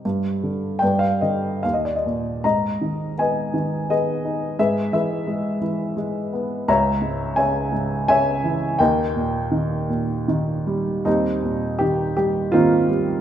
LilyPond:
<<
  \new Staff \with { instrumentName = "Upright piano" } { \time 3/4 \key g \phrygian \tempo 4 = 83 << { ees''4 g''16 f''16 ees''8 f''32 ees''32 d''32 ees''32 r8 | \key gis \minor ais''4 gis''4 dis''4 | e''8 e''4 r4. | ais''4 gis''4 gis''4 |
g''2 r4 | \key ees \major ees'4 g'8 g'8 f'4 | } \\ { <g' c''>4 <b' d''>4 r4 | dis''4 <b' dis''>4 <gis' b'>4 | <gis' b'>8 <gis' b'>4. r4 | <cis'' e''>4 <cis'' e''>4 <cis'' e''>4 |
<ais' dis''>2 r4 | <g c'>4. r8 <bes c'>4 | } >> }
  \new Staff \with { instrumentName = "Upright piano" } { \clef bass \time 3/4 \key g \phrygian g,8 d8 g,8 d8 ees,8 bes,8 | \key gis \minor gis,8 dis8 b8 dis8 b8 dis'8 | gis,8 e8 gis8 e8 gis8 b8 | cis,8 gis,8 cis8 gis,8 cis8 e8 |
dis,8 ais,8 dis8 ais,8 dis8 g8 | \key ees \major ees,8 bes,8 ees8 g8 ees8 g8 | }
>>